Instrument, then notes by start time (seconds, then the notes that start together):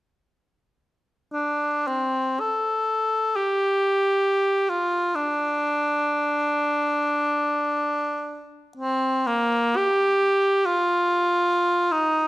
cor anglais
1.33 D4
1.87 C4
2.40 A4
3.36 G4
4.69 F4
5.15 D4
8.77 C4
9.26 A#3
9.77 G4
10.65 F4
11.92 D#4